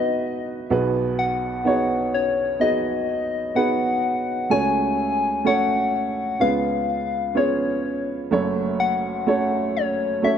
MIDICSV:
0, 0, Header, 1, 3, 480
1, 0, Start_track
1, 0, Key_signature, 3, "minor"
1, 0, Tempo, 950872
1, 362, Time_signature, 4, 2, 24, 8
1, 5239, End_track
2, 0, Start_track
2, 0, Title_t, "Soft synth lead"
2, 0, Program_c, 0, 80
2, 0, Note_on_c, 0, 75, 88
2, 247, Note_off_c, 0, 75, 0
2, 600, Note_on_c, 0, 78, 95
2, 1082, Note_on_c, 0, 73, 88
2, 1090, Note_off_c, 0, 78, 0
2, 1318, Note_on_c, 0, 75, 95
2, 1325, Note_off_c, 0, 73, 0
2, 1796, Note_off_c, 0, 75, 0
2, 1798, Note_on_c, 0, 78, 102
2, 2277, Note_on_c, 0, 80, 114
2, 2285, Note_off_c, 0, 78, 0
2, 2760, Note_on_c, 0, 78, 109
2, 2767, Note_off_c, 0, 80, 0
2, 3236, Note_on_c, 0, 77, 97
2, 3243, Note_off_c, 0, 78, 0
2, 3722, Note_on_c, 0, 73, 82
2, 3729, Note_off_c, 0, 77, 0
2, 4081, Note_off_c, 0, 73, 0
2, 4442, Note_on_c, 0, 78, 82
2, 4930, Note_on_c, 0, 73, 86
2, 4937, Note_off_c, 0, 78, 0
2, 5168, Note_off_c, 0, 73, 0
2, 5171, Note_on_c, 0, 76, 97
2, 5239, Note_off_c, 0, 76, 0
2, 5239, End_track
3, 0, Start_track
3, 0, Title_t, "Upright piano"
3, 0, Program_c, 1, 0
3, 0, Control_c, 1, 64, 127
3, 0, Note_on_c, 1, 35, 63
3, 0, Note_on_c, 1, 47, 64
3, 0, Note_on_c, 1, 59, 76
3, 0, Note_on_c, 1, 63, 66
3, 0, Note_on_c, 1, 66, 75
3, 0, Note_on_c, 1, 71, 72
3, 0, Note_on_c, 1, 75, 85
3, 334, Note_off_c, 1, 59, 0
3, 335, Note_off_c, 1, 63, 0
3, 337, Note_off_c, 1, 66, 0
3, 338, Note_off_c, 1, 71, 0
3, 339, Note_off_c, 1, 75, 0
3, 342, Note_off_c, 1, 35, 0
3, 342, Note_off_c, 1, 47, 0
3, 354, Note_on_c, 1, 59, 92
3, 357, Note_on_c, 1, 35, 81
3, 357, Note_on_c, 1, 63, 78
3, 358, Note_on_c, 1, 66, 86
3, 359, Note_on_c, 1, 47, 77
3, 359, Note_on_c, 1, 68, 73
3, 365, Note_on_c, 1, 71, 93
3, 367, Control_c, 1, 64, 0
3, 443, Control_c, 1, 64, 127
3, 811, Note_off_c, 1, 59, 0
3, 812, Note_off_c, 1, 63, 0
3, 813, Note_off_c, 1, 66, 0
3, 813, Note_off_c, 1, 68, 0
3, 816, Note_off_c, 1, 71, 0
3, 831, Note_on_c, 1, 59, 84
3, 834, Note_on_c, 1, 63, 74
3, 835, Note_on_c, 1, 66, 73
3, 838, Note_on_c, 1, 68, 70
3, 841, Note_on_c, 1, 73, 81
3, 1289, Note_off_c, 1, 59, 0
3, 1291, Note_off_c, 1, 63, 0
3, 1291, Note_off_c, 1, 66, 0
3, 1292, Note_off_c, 1, 68, 0
3, 1294, Note_off_c, 1, 73, 0
3, 1309, Note_on_c, 1, 59, 67
3, 1312, Note_on_c, 1, 63, 64
3, 1316, Note_on_c, 1, 66, 66
3, 1318, Note_on_c, 1, 68, 67
3, 1318, Note_on_c, 1, 75, 85
3, 1768, Note_off_c, 1, 59, 0
3, 1769, Note_off_c, 1, 63, 0
3, 1771, Note_off_c, 1, 66, 0
3, 1772, Note_off_c, 1, 68, 0
3, 1772, Note_off_c, 1, 75, 0
3, 1792, Note_on_c, 1, 59, 80
3, 1795, Note_on_c, 1, 63, 69
3, 1796, Note_on_c, 1, 66, 69
3, 1798, Note_on_c, 1, 68, 68
3, 1801, Note_on_c, 1, 71, 77
3, 2249, Note_off_c, 1, 59, 0
3, 2250, Note_off_c, 1, 63, 0
3, 2251, Note_off_c, 1, 66, 0
3, 2252, Note_off_c, 1, 35, 0
3, 2252, Note_off_c, 1, 68, 0
3, 2253, Note_off_c, 1, 47, 0
3, 2254, Note_off_c, 1, 71, 0
3, 2270, Note_on_c, 1, 57, 71
3, 2273, Note_on_c, 1, 61, 60
3, 2275, Note_on_c, 1, 37, 61
3, 2275, Note_on_c, 1, 49, 64
3, 2275, Note_on_c, 1, 66, 65
3, 2279, Note_on_c, 1, 69, 65
3, 2279, Note_on_c, 1, 73, 84
3, 2282, Control_c, 1, 64, 0
3, 2375, Control_c, 1, 64, 127
3, 2728, Note_off_c, 1, 57, 0
3, 2730, Note_off_c, 1, 61, 0
3, 2730, Note_off_c, 1, 66, 0
3, 2732, Note_off_c, 1, 69, 0
3, 2733, Note_off_c, 1, 73, 0
3, 2748, Note_on_c, 1, 57, 75
3, 2751, Note_on_c, 1, 61, 71
3, 2754, Note_on_c, 1, 66, 62
3, 2755, Note_on_c, 1, 69, 67
3, 2758, Note_on_c, 1, 73, 82
3, 3207, Note_off_c, 1, 57, 0
3, 3209, Note_off_c, 1, 61, 0
3, 3210, Note_off_c, 1, 66, 0
3, 3211, Note_off_c, 1, 69, 0
3, 3212, Note_off_c, 1, 73, 0
3, 3214, Note_off_c, 1, 37, 0
3, 3214, Note_off_c, 1, 49, 0
3, 3229, Note_on_c, 1, 59, 63
3, 3230, Note_on_c, 1, 61, 62
3, 3233, Note_on_c, 1, 37, 55
3, 3233, Note_on_c, 1, 49, 61
3, 3234, Note_on_c, 1, 65, 59
3, 3236, Note_on_c, 1, 68, 56
3, 3238, Note_on_c, 1, 71, 68
3, 3240, Control_c, 1, 64, 0
3, 3327, Control_c, 1, 64, 127
3, 3689, Note_off_c, 1, 59, 0
3, 3689, Note_off_c, 1, 61, 0
3, 3691, Note_off_c, 1, 65, 0
3, 3692, Note_off_c, 1, 68, 0
3, 3694, Note_off_c, 1, 71, 0
3, 3708, Note_on_c, 1, 59, 72
3, 3710, Note_on_c, 1, 61, 66
3, 3713, Note_on_c, 1, 65, 65
3, 3716, Note_on_c, 1, 68, 67
3, 3718, Note_on_c, 1, 73, 72
3, 4171, Note_off_c, 1, 59, 0
3, 4172, Note_off_c, 1, 61, 0
3, 4173, Note_off_c, 1, 65, 0
3, 4175, Note_off_c, 1, 68, 0
3, 4176, Note_off_c, 1, 73, 0
3, 4178, Note_off_c, 1, 37, 0
3, 4178, Note_off_c, 1, 49, 0
3, 4194, Note_on_c, 1, 57, 83
3, 4197, Note_on_c, 1, 61, 77
3, 4199, Note_on_c, 1, 30, 81
3, 4199, Note_on_c, 1, 42, 79
3, 4199, Note_on_c, 1, 66, 72
3, 4203, Note_on_c, 1, 69, 78
3, 4203, Note_on_c, 1, 73, 89
3, 4206, Control_c, 1, 64, 0
3, 4292, Control_c, 1, 64, 127
3, 4656, Note_off_c, 1, 57, 0
3, 4657, Note_off_c, 1, 61, 0
3, 4658, Note_off_c, 1, 66, 0
3, 4660, Note_off_c, 1, 69, 0
3, 4660, Note_off_c, 1, 73, 0
3, 4677, Note_on_c, 1, 57, 80
3, 4678, Note_on_c, 1, 61, 64
3, 4681, Note_on_c, 1, 66, 70
3, 4683, Note_on_c, 1, 69, 75
3, 4684, Note_on_c, 1, 73, 86
3, 5138, Note_off_c, 1, 57, 0
3, 5139, Note_off_c, 1, 61, 0
3, 5140, Note_off_c, 1, 66, 0
3, 5141, Note_off_c, 1, 69, 0
3, 5142, Note_off_c, 1, 73, 0
3, 5161, Note_on_c, 1, 57, 67
3, 5162, Note_on_c, 1, 61, 69
3, 5166, Note_on_c, 1, 66, 60
3, 5168, Note_on_c, 1, 69, 65
3, 5170, Note_on_c, 1, 73, 73
3, 5239, Note_off_c, 1, 30, 0
3, 5239, Note_off_c, 1, 42, 0
3, 5239, Note_off_c, 1, 57, 0
3, 5239, Note_off_c, 1, 61, 0
3, 5239, Note_off_c, 1, 66, 0
3, 5239, Note_off_c, 1, 69, 0
3, 5239, Note_off_c, 1, 73, 0
3, 5239, End_track
0, 0, End_of_file